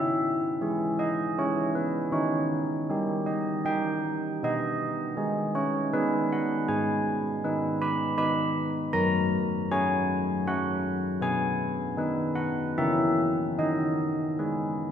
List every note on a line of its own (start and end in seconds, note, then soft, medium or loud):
0.00 0.60 C#4 soft
0.00 0.96 E5 medium
0.61 1.34 E4 soft
0.61 1.34 G#4 medium
0.99 1.36 D#5 medium
1.38 2.10 E4 soft
1.38 2.10 G#4 soft
1.38 1.75 C#5 medium
1.75 2.12 B4 medium
2.12 2.87 D#4 medium
2.12 3.23 C#5 medium
2.89 3.61 D#4 soft
2.89 3.62 G4 medium
3.26 3.63 D#5 medium
3.65 4.37 D#4 soft
3.65 4.37 G4 soft
3.65 4.38 G5 medium
4.43 5.15 B3 medium
4.43 5.51 D#5 medium
5.17 5.88 D#4 soft
5.17 5.88 G#4 medium
5.55 5.91 C#5 medium
5.93 6.64 D#4 soft
5.93 6.65 G#4 medium
5.93 6.29 B4 medium
6.32 6.67 F#5 medium
6.68 7.41 G#3 medium
6.68 7.76 G#5 medium
7.44 8.14 D#4 medium
7.44 8.14 B4 medium
7.82 8.17 B5 medium
8.18 8.89 D#4 soft
8.18 8.89 B4 soft
8.18 8.90 B5 medium
8.93 9.67 F#3 medium
8.93 9.66 A#5 medium
9.71 10.43 F#4 soft
9.71 10.43 C#5 medium
9.71 10.44 G#5 loud
10.47 11.18 F#4 soft
10.47 11.19 C#5 medium
10.47 10.83 F#5 medium
11.21 11.95 B3 medium
11.21 12.33 G#5 medium
11.97 12.72 D#4 medium
11.97 12.72 B4 medium
12.35 12.74 F#5 medium
12.78 13.56 C#4 medium
12.78 13.54 E4 soft
12.78 13.54 A#4 soft
12.78 13.54 E5 medium
13.59 14.37 D#4 medium
13.59 14.92 D#5 medium
14.39 14.92 G#4 soft
14.39 14.92 B4 soft